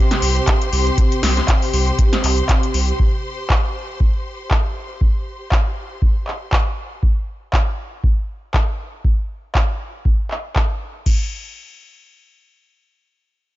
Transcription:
Already playing: analog synth pad C3 C4 G4, string section G4 C5 C6
0.11 snare, closed hi-hat
0.22 sub bass C2, open hi-hat
0.36 closed hi-hat
0.47 kick, clap, closed hi-hat
0.62 closed hi-hat
0.73 sub bass C2, open hi-hat
0.87 closed hi-hat
0.98 kick, closed hi-hat
1.12 closed hi-hat
1.23 sub bass C2, snare, open hi-hat
1.37 snare, closed hi-hat
1.48 kick, clap, closed hi-hat
1.62 open hi-hat
1.73 sub bass C2, open hi-hat
1.88 closed hi-hat
1.99 kick, closed hi-hat
2.13 snare, closed hi-hat
2.24 sub bass C2, clap, open hi-hat
2.38 closed hi-hat
2.49 kick, clap, closed hi-hat
2.63 closed hi-hat
2.74 sub bass C2, open hi-hat
2.88 closed hi-hat
3.00 kick
3.50 kick, clap
4.00 kick
4.51 kick, clap
5.01 kick
5.52 kick, clap
6.02 kick
6.28 clap
6.52 kick, clap
7.03 kick
7.53 kick, clap
8.04 kick
8.54 kick, clap
9.05 kick
9.55 kick, clap
10.05 kick
10.31 clap
10.56 kick, clap
11.06 kick, crash

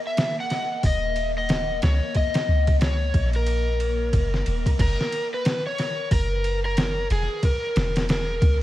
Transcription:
Already playing: synth drone A#3 A#4
0.07 electric slide guitar E5
0.17 snare, ride
0.40 electric slide guitar F#5
0.50 snare, ride
0.83 808-style bass D#1, electric slide guitar D#5, kick, open hi-hat
1.16 ride
1.38 electric slide guitar D#5
1.49 snare, ride
1.82 808-style bass C#2, electric slide guitar C#5, snare, ride
2.15 electric slide guitar D#5, kick, ride
2.34 snare, ride
2.48 808-style bass C#2
2.67 kick, ride
2.81 electric slide guitar C#5, snare, ride
3.14 808-style bass A#1, kick, ride
3.33 electric slide guitar A#4, ride
3.46 ride
3.80 ride
4.13 808-style bass F#1, kick, ride
4.34 snare
4.46 808-style bass D#1, ride
4.66 kick, ride
4.79 808-style bass F#1, electric slide guitar A#4, kick, crash, ride
5.01 snare
5.12 ride
5.34 electric slide guitar B4
5.45 snare, ride
5.67 electric slide guitar C#5
5.78 snare, ride
6.11 808-style bass F#1, electric slide guitar A#4, kick, open hi-hat
6.44 ride
6.65 electric slide guitar A#4
6.77 snare, ride
7.10 808-style bass E1, electric slide guitar G#4, ride
7.43 electric slide guitar A#4, kick, ride
7.76 808-style bass E1, snare, ride
7.96 snare, ride
8.09 electric slide guitar A#4, snare, ride
8.42 808-style bass C#2, kick, ride

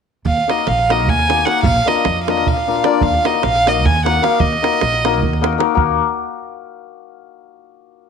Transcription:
0.25 upright bass D#2, violin F5, davul low
0.37 davul high
0.48 hammered dulcimer A#3 D#4 F#4 A#4, violin D#5, davul high
0.58 davul high
0.67 upright bass A#1, violin F5, davul high
0.79 davul high
0.89 hammered dulcimer A#3 D#4 F#4 A#4, violin D#5, davul high
1.00 davul high
1.08 upright bass D#2, violin G#5, davul low
1.19 davul high
1.29 hammered dulcimer A#3 D#4 F#4 A#4, davul high
1.38 davul high
1.45 hammered dulcimer A#3 D#4 F#4 A#4, violin F#5, davul high
1.63 upright bass A#1, violin F5, davul low
1.76 davul high
1.86 hammered dulcimer A#3 D4 F4 A#4, violin D#5, davul high
1.97 davul high
2.05 upright bass F2, davul high
2.17 davul high
2.23 violin F5
2.28 hammered dulcimer A#3 D4 F4 A#4, violin D#5, davul high
2.37 davul high
2.47 upright bass A#1, violin F5, davul low
2.57 davul high
2.68 hammered dulcimer A#3 D4 F4 A#4
2.76 davul high
2.84 hammered dulcimer A#3 D4 F4 A#4, violin D5, davul high
3.01 upright bass D#2, violin F5, davul low
3.14 davul high
3.24 hammered dulcimer A#3 D#4 F#4 A#4, violin D#5, davul high
3.34 davul high
3.43 upright bass A#1, violin F5, davul high
3.55 davul high
3.66 hammered dulcimer A#3 D#4 F#4 A#4, violin D#5, davul high
3.76 davul high
3.85 upright bass D#2, violin G#5, davul low
3.96 davul high
4.05 hammered dulcimer A#3 D#4 F#4 A#4, violin F#5, davul high
4.15 davul high
4.22 hammered dulcimer A#3 D#4 F#4 A#4, violin F5, davul high
4.40 upright bass D#2, violin D#5, davul low
4.53 davul high
4.62 hammered dulcimer A#3 D#4 F#4 A#4, davul high
4.73 davul high
4.81 upright bass A#1, davul high
4.93 davul high
5.05 hammered dulcimer A#3 D#4 F#4 A#4, davul high
5.14 davul high
5.23 upright bass D#2, davul low
5.33 davul high
5.41 hammered dulcimer A#3 D#4 F#4 A#4, davul high
5.53 davul high
5.58 hammered dulcimer A#3 D#4 F#4 A#4, davul high
5.75 upright bass D#2, hammered dulcimer A#3 D#4 F#4 A#4, davul low

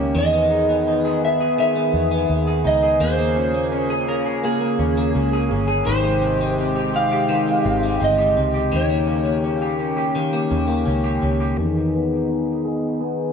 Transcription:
Already playing: fingered electric bass C#2, analog synth pad D#3 A#3 C#4 G4, clean electric guitar D#3 A#3 C#4 G4
0.15 fingered electric bass E2, analog synth pad D#3 B3 G#4, clean electric guitar D#3, electric slide guitar D#5
0.33 clean electric guitar B3
0.51 clean electric guitar D#4, vibraphone G#4
0.69 clean electric guitar B3
0.87 clean electric guitar D#4
1.05 clean electric guitar G#4
1.25 electric slide guitar E5
1.41 clean electric guitar G#4
1.58 clean electric guitar D#3, electric slide guitar E5
1.76 clean electric guitar B3
1.94 fingered electric bass E2
2.11 clean electric guitar B3
2.30 fingered electric bass D#2
2.47 clean electric guitar G#4
2.64 fingered electric bass C#2, clean electric guitar D#4, electric slide guitar D#5
2.83 clean electric guitar G#4
3.00 fingered electric bass D#2, analog synth pad C#3 A#3, clean electric guitar A#3, electric slide guitar C5
3.19 clean electric guitar A#3
3.35 clean electric guitar C#4, vibraphone F4
3.54 clean electric guitar A#3
3.72 clean electric guitar C#4
3.90 clean electric guitar G#4
4.08 clean electric guitar C#4, electric slide guitar A#4
4.26 clean electric guitar G#4
4.44 clean electric guitar A#3, electric slide guitar G#4
4.61 clean electric guitar A#3
4.79 fingered electric bass D#2, clean electric guitar C#4
4.97 clean electric guitar A#3
5.15 fingered electric bass C#2, clean electric guitar C#4
5.33 clean electric guitar G#4
5.51 fingered electric bass G1, clean electric guitar C#4
5.68 clean electric guitar G#4
5.85 fingered electric bass G#1, analog synth pad C3 G#3 G4, clean electric guitar D#3, electric slide guitar C5
6.04 clean electric guitar G#3
6.22 clean electric guitar C4
6.41 clean electric guitar G#3
6.58 clean electric guitar C4
6.76 clean electric guitar G4
6.93 clean electric guitar C4, vibraphone D#4, electric slide guitar F5
7.12 clean electric guitar G4
7.29 clean electric guitar D#3
7.47 clean electric guitar G#3
7.65 fingered electric bass G#1, clean electric guitar C4
7.83 clean electric guitar G#3
8.00 fingered electric bass G1, clean electric guitar C4, electric slide guitar D#5
8.18 clean electric guitar G4
8.37 fingered electric bass C#2, clean electric guitar C4
8.54 clean electric guitar G4
8.72 fingered electric bass D#2, analog synth pad C#3 A#3 G4, clean electric guitar D#3
8.76 electric slide guitar C#5
8.90 clean electric guitar A#3
9.07 clean electric guitar C#4
9.25 clean electric guitar A#3
9.44 clean electric guitar C#4
9.62 clean electric guitar G4
9.79 clean electric guitar C#4
9.97 clean electric guitar G4
10.15 clean electric guitar D#3
10.33 clean electric guitar A#3
10.50 fingered electric bass D#2, clean electric guitar C#4
10.68 clean electric guitar A#3
10.85 fingered electric bass C#2, clean electric guitar C#4
11.04 clean electric guitar G4
11.22 fingered electric bass C#2, clean electric guitar C#4
11.40 clean electric guitar G4
11.58 fingered electric bass E2, clean electric guitar D#3, analog synth pad D#3 B3 D#4 G#4
11.94 clean electric guitar B3
12.29 clean electric guitar D#4
12.65 clean electric guitar G#4
13.00 clean electric guitar B3

